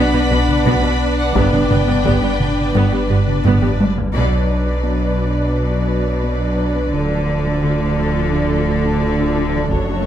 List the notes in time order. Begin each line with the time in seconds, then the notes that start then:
Already playing: B1 B3 D4 B4 D5 F#5 B5
0.13 B2 B3 B4
0.30 B1 B2 B3 B4
0.48 taiko mid
0.65 B1 B2 B3 B5, taiko
0.83 B2 B3 B4
1.18 F#5
1.34 G1 G2 G3 B3 B4 D5 G5, taiko
1.53 G2 B3 D4, taiko mid
1.70 G1 G2 B3, taiko mid
1.88 G2 B3
2.04 G1 G2 G3 B3, taiko
2.23 G2 B3 D4
2.40 taiko mid
2.74 G1 G2 G3 B3
2.92 G2 B3 G4
3.09 G1 G2 B3 G4
3.28 taiko mid
3.44 G1 G2 G3 B3, taiko low-mid
3.61 G2 B3 G4, taiko low-mid
3.80 taiko high
3.98 taiko low
4.14 B1 B2 F#3 B3 D4 B4 D5, taiko
4.32 B4
4.66 F#4
4.84 B3
5.01 B4
5.18 F#4
5.54 B3
5.71 F#4
5.90 D4
6.07 B4
6.24 B3
6.41 B4
6.59 B4
6.76 D4
6.93 D1 D2 D3 F3 F4 A4
7.12 D4
7.46 A3
7.63 D3
7.81 D4
7.98 A3
8.33 D3
8.50 A3
8.67 F3
8.85 D4
9.02 D3
9.20 D4
9.37 D4
9.55 F3
9.72 F#1 F#2 F#3 A3 F#4 C#5, taiko
9.90 F#4